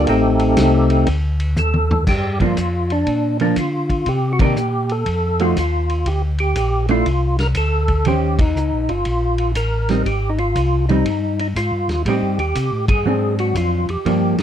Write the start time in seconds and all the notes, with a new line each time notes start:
0.07 A1 A3 C4 D#4 G4 A4, kick, ride
0.39 ride
0.57 C2, kick, snare, hi-hat pedal, ride
0.90 ride
1.07 D2, kick, ride
1.40 ride
1.56 D#2 A4, hi-hat pedal, high tom
1.74 high tom
1.91 floor tom
2.07 G2 G4, kick, snare, crash
2.40 F3 A#3 D4 F4, kick, ride
2.57 F2, kick, hi-hat pedal, ride
2.90 D4, ride
3.06 A#2, kick, ride
3.40 F3 A#3 D4, ride
3.56 D3 F4, kick, hi-hat pedal, ride
3.90 kick, ride
4.06 C3 G4, kick, ride
4.33 F#4
4.39 D#3 A#3 D4 G4, kick, ride
4.56 A#2, hi-hat pedal
4.89 A4, ride
5.06 F2, kick, ride
5.39 F3 A3 D#4 F4 F#4, ride
5.56 D#2 F4, kick, hi-hat pedal, ride
5.89 ride
6.06 D2 G4, kick, ride
6.38 G4, ride
6.56 A#1, kick, hi-hat pedal, ride
6.88 A3 D4 E4 F4, ride
7.06 C2, kick, ride
7.39 A#4, snare, ride
7.55 D2 A4, kick, hi-hat pedal, ride
7.88 kick, ride
8.05 D#2 D#3 C#4 G4 C5, kick, ride
8.39 D#4, kick, ride
8.55 C#2, hi-hat pedal
8.72 A#1
8.89 G1 F4, ride
9.05 A#1, kick, ride
9.38 ride
9.55 A1 A#4, kick, hi-hat pedal, ride
9.89 G3 C4 D#4, snare, ride
10.06 G#1 G4, kick, ride
10.30 D#4
10.38 F4, ride
10.55 C2, kick, hi-hat pedal, ride
10.89 G3 C4 D#4, ride
11.06 G2, kick, ride
11.39 D#4, ride
11.55 G#2 F4, kick, hi-hat pedal, ride
11.71 G2
11.88 D#2, snare, ride
12.05 A2 G3 C4 D#4 G4, kick, ride
12.22 G2
12.38 D#2 G4, ride
12.55 C3, kick, hi-hat pedal, ride
12.72 A2
12.88 G2 G#4, kick, ride
13.05 G#2 F#3 C4 D4
13.39 F#4, ride
13.55 F2 F4, kick, hi-hat pedal, ride
13.89 F2 G4, ride
14.05 G2 F3 A#3 D4, kick, ride
14.38 G2, snare, ride